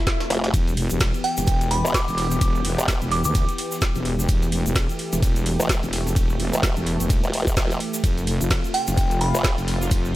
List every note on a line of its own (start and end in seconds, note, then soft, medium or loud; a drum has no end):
0.00 0.50 C3 medium
0.00 0.50 A3 medium
0.00 0.50 F4 loud
0.00 swell medium
0.07 kick loud
0.07 snare loud
0.07 closed hi-hat medium
0.07 tambourine medium
0.20 snare loud
0.20 closed hi-hat soft
0.20 tambourine medium
0.30 0.52 F1 loud
0.30 snare loud
0.30 open hi-hat medium
0.30 tambourine medium
0.44 snare loud
0.44 closed hi-hat soft
0.44 tambourine medium
0.54 0.89 E1 loud
0.54 8.00 E3 medium
0.54 4.25 B3 medium
0.54 8.00 G4 medium
0.54 kick loud
0.54 closed hi-hat medium
0.54 ride medium
0.54 tambourine medium
0.54 shaker medium
0.67 closed hi-hat soft
0.67 shaker soft
0.77 open hi-hat loud
0.77 tambourine medium
0.90 1.12 E1 medium
0.90 closed hi-hat soft
0.90 shaker medium
1.00 kick loud
1.00 snare loud
1.00 closed hi-hat medium
1.00 ride medium
1.00 tambourine medium
1.00 shaker medium
1.14 closed hi-hat soft
1.14 shaker soft
1.24 1.69 G5 medium
1.24 open hi-hat medium
1.24 tambourine medium
1.37 1.82 E1 loud
1.37 snare medium
1.37 closed hi-hat medium
1.37 shaker medium
1.47 kick loud
1.47 closed hi-hat medium
1.47 ride medium
1.47 tambourine medium
1.47 shaker medium
1.61 closed hi-hat medium
1.61 shaker soft
1.71 1.87 B5 medium
1.71 open hi-hat loud
1.71 tambourine medium
1.85 2.06 E1 medium
1.85 snare soft
1.85 shaker medium
1.94 2.61 D6 medium
1.94 kick loud
1.94 snare loud
1.94 closed hi-hat medium
1.94 ride medium
1.94 tambourine medium
1.94 shaker medium
2.08 2.40 E1 loud
2.08 closed hi-hat soft
2.08 shaker soft
2.18 open hi-hat medium
2.31 snare medium
2.31 shaker medium
2.41 2.76 E1 loud
2.41 kick loud
2.41 closed hi-hat medium
2.41 ride medium
2.41 tambourine medium
2.41 shaker medium
2.55 shaker soft
2.65 open hi-hat loud
2.65 tambourine medium
2.78 3.00 E1 loud
2.78 closed hi-hat soft
2.78 shaker medium
2.88 kick loud
2.88 snare loud
2.88 closed hi-hat medium
2.88 ride medium
2.88 tambourine medium
2.88 shaker medium
3.01 3.23 E1 medium
3.01 closed hi-hat soft
3.01 shaker soft
3.12 3.20 D6 medium
3.12 open hi-hat medium
3.12 tambourine medium
3.24 3.46 D2 loud
3.24 3.31 D6 medium
3.24 closed hi-hat soft
3.24 shaker medium
3.35 kick loud
3.35 closed hi-hat medium
3.35 ride medium
3.35 tambourine medium
3.35 shaker medium
3.49 closed hi-hat medium
3.49 shaker soft
3.58 open hi-hat loud
3.58 tambourine medium
3.71 snare soft
3.71 shaker medium
3.81 kick loud
3.81 snare loud
3.81 closed hi-hat medium
3.81 ride medium
3.81 tambourine medium
3.81 shaker medium
3.95 4.27 E1 loud
3.95 closed hi-hat soft
3.95 shaker soft
4.05 open hi-hat loud
4.05 tambourine medium
4.19 snare soft
4.19 shaker medium
4.29 4.64 E1 loud
4.29 10.16 A3 medium
4.29 kick loud
4.29 closed hi-hat medium
4.29 ride medium
4.29 tambourine medium
4.29 shaker medium
4.42 closed hi-hat soft
4.42 shaker soft
4.52 open hi-hat loud
4.52 tambourine medium
4.66 4.87 E1 medium
4.66 closed hi-hat soft
4.66 shaker medium
4.75 kick loud
4.75 snare loud
4.75 closed hi-hat medium
4.75 ride medium
4.75 tambourine medium
4.75 shaker medium
4.89 closed hi-hat soft
4.89 shaker soft
4.99 open hi-hat loud
4.99 tambourine medium
5.13 5.57 E1 loud
5.13 snare medium
5.13 closed hi-hat soft
5.13 shaker medium
5.22 kick loud
5.22 closed hi-hat medium
5.22 ride medium
5.22 tambourine medium
5.22 shaker medium
5.36 closed hi-hat medium
5.36 shaker soft
5.46 open hi-hat loud
5.46 tambourine medium
5.60 5.81 E1 medium
5.60 snare soft
5.60 shaker medium
5.69 kick loud
5.69 snare loud
5.69 closed hi-hat medium
5.69 ride medium
5.69 tambourine medium
5.69 shaker medium
5.83 6.15 E1 loud
5.83 closed hi-hat soft
5.83 shaker soft
5.93 open hi-hat medium
5.93 open hi-hat loud
6.06 snare medium
6.06 shaker medium
6.16 6.51 E1 medium
6.16 kick loud
6.16 closed hi-hat medium
6.16 ride medium
6.16 tambourine medium
6.16 shaker medium
6.29 shaker soft
6.40 open hi-hat loud
6.40 tambourine medium
6.53 6.75 E1 loud
6.53 closed hi-hat soft
6.53 shaker medium
6.63 kick loud
6.63 snare loud
6.63 closed hi-hat medium
6.63 ride medium
6.63 tambourine medium
6.63 shaker medium
6.76 6.98 E1 loud
6.76 closed hi-hat soft
6.76 shaker soft
6.87 open hi-hat loud
6.87 tambourine medium
7.00 7.21 E1 medium
7.00 closed hi-hat medium
7.00 shaker medium
7.10 kick loud
7.10 closed hi-hat medium
7.10 ride medium
7.10 tambourine medium
7.10 shaker medium
7.24 7.32 E1 medium
7.24 closed hi-hat soft
7.24 shaker soft
7.33 7.55 E1 loud
7.33 open hi-hat loud
7.33 tambourine medium
7.47 kick medium
7.47 snare soft
7.47 shaker medium
7.57 7.79 E1 loud
7.57 kick loud
7.57 snare loud
7.57 closed hi-hat medium
7.57 ride medium
7.57 tambourine medium
7.57 shaker medium
7.71 closed hi-hat soft
7.71 shaker soft
7.80 open hi-hat loud
7.80 tambourine medium
7.94 snare soft
7.94 shaker medium
8.04 8.39 F1 medium
8.04 10.16 C3 medium
8.04 10.16 F4 loud
8.04 kick loud
8.04 closed hi-hat medium
8.04 ride medium
8.04 tambourine medium
8.04 shaker medium
8.17 closed hi-hat soft
8.17 shaker soft
8.27 open hi-hat loud
8.27 tambourine medium
8.41 8.62 F1 medium
8.41 closed hi-hat soft
8.41 shaker medium
8.51 kick loud
8.51 snare loud
8.51 closed hi-hat medium
8.51 ride medium
8.51 tambourine medium
8.51 shaker medium
8.64 closed hi-hat soft
8.64 shaker soft
8.74 9.19 G5 medium
8.74 open hi-hat medium
8.74 tambourine medium
8.87 9.32 F1 medium
8.87 snare medium
8.87 closed hi-hat soft
8.87 shaker medium
8.97 kick loud
8.97 closed hi-hat medium
8.97 ride medium
8.97 tambourine medium
8.97 shaker medium
9.11 closed hi-hat soft
9.11 shaker soft
9.21 9.37 B5 medium
9.21 open hi-hat loud
9.21 tambourine medium
9.35 9.56 F1 loud
9.35 snare soft
9.35 shaker medium
9.44 kick loud
9.44 snare loud
9.44 closed hi-hat medium
9.44 ride medium
9.44 tambourine medium
9.44 shaker medium
9.58 9.90 F1 loud
9.58 closed hi-hat soft
9.58 shaker soft
9.68 open hi-hat medium
9.82 snare soft
9.82 shaker medium
9.91 10.16 F1 loud
9.91 kick loud
9.91 closed hi-hat medium
9.91 ride medium
9.91 tambourine medium
9.91 shaker medium
10.05 shaker soft